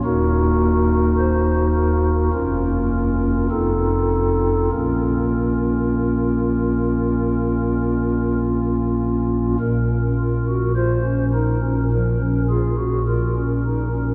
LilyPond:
<<
  \new Staff \with { instrumentName = "Pipe organ" } { \time 4/4 \key bes \minor \tempo 4 = 52 << { bes'4 c''8 bes'8 bes'4 a'4 | bes'2. r4 | bes'4 c''8 bes'8 bes'8 aes'8 bes'4 | } \\ { <ees, bes ees' ges'>2 <f, bes des' f'>4 <f, c' ees' f'>4 | <bes, bes des' f'>1 | bes,16 des'16 f'16 ges'16 f'16 des'16 ees'16 des'16 f16 des'16 f'16 ges'16 f'16 des'16 ees'16 des'16 | } >> }
  \new Staff \with { instrumentName = "Pipe organ" } { \clef bass \time 4/4 \key bes \minor ees,,2 f,,4 f,,4 | bes,,1 | bes,,1 | }
>>